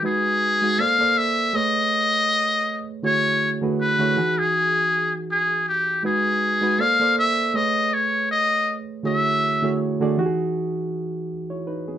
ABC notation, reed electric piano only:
X:1
M:4/4
L:1/16
Q:"Swing 16ths" 1/4=80
K:E
V:1 name="Reed electric piano"
[G,DFB]2 z [G,DFG] [^A,=A^B=d] [^A,=ABd]3 [=A,G=Bc]6- [A,GBc] z | [=D,A,EFGc]2 z [D,A,EFGB]2 [D,A,EFGc] [E,^DFG]6- [E,DFG] z3 | [G,DFB]2 z [G,DFB] [^A,=A^B=d] [^A,=ABd]3 [=A,G=Bc]6- [A,GBc] z | [=D,A,EFGc]2 z [D,A,EFGc]2 [D,A,EFG=d] [E,^DF=G^G]6- [E,DF=G^G] [Ec] [DB] [B,G] |]